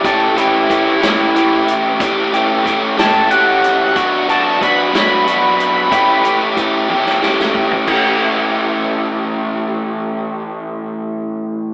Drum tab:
CC |------------|------------|------------|------------|
HH |x-x-x-x-x-x-|x-x-x-x-x-x-|x-x-x-x-x-x-|x-x-x-------|
SD |------o-----|------o-----|------o-----|-------ooo--|
T1 |------------|------------|------------|------o-----|
FT |------------|------------|------------|-----------o|
BD |o---o-------|o---o-------|o---o-------|o---o-----o-|

CC |x-----------|------------|
HH |------------|------------|
SD |------------|------------|
T1 |------------|------------|
FT |------------|------------|
BD |o-----------|------------|